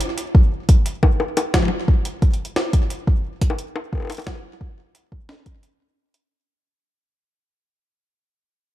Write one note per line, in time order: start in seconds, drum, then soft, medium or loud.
0.01 closed hi-hat medium
0.18 closed hi-hat soft
0.35 kick loud
0.69 kick loud
0.69 closed hi-hat medium
0.86 closed hi-hat medium
1.03 kick loud
1.03 high bongo medium
1.20 high bongo medium
1.37 closed hi-hat medium
1.37 high bongo medium
1.54 kick loud
1.54 snare loud
1.54 closed hi-hat medium
1.54 high tom soft
1.57 high tom medium
1.60 high tom medium
1.63 high tom medium
1.65 high tom medium
1.68 high tom medium
1.88 kick loud
2.05 closed hi-hat medium
2.22 kick loud
2.22 closed hi-hat soft
2.34 closed hi-hat soft
2.45 closed hi-hat soft
2.56 snare loud
2.56 high bongo soft
2.73 kick loud
2.73 closed hi-hat medium
2.90 closed hi-hat medium
3.07 kick loud
3.41 kick loud
3.41 closed hi-hat medium
3.50 high bongo medium
3.59 closed hi-hat medium
3.76 high bongo medium
3.93 kick loud
3.93 high bongo soft
3.95 high bongo soft
3.97 high bongo soft
4.00 high bongo soft
4.02 high bongo soft
4.05 high bongo soft
4.07 closed hi-hat medium
4.07 high bongo soft
4.10 closed hi-hat medium
4.10 high bongo medium
4.15 closed hi-hat soft
4.17 closed hi-hat soft
4.17 high bongo medium
4.19 closed hi-hat soft
4.22 closed hi-hat soft
4.24 snare loud
4.24 closed hi-hat soft
4.27 kick loud
4.27 closed hi-hat medium
4.27 high tom loud
4.27 high bongo medium
4.35 high bongo soft
4.61 kick loud
4.95 closed hi-hat medium
5.12 kick loud
5.29 snare loud
5.46 kick loud
5.46 closed hi-hat medium
5.63 closed hi-hat medium
6.14 closed hi-hat medium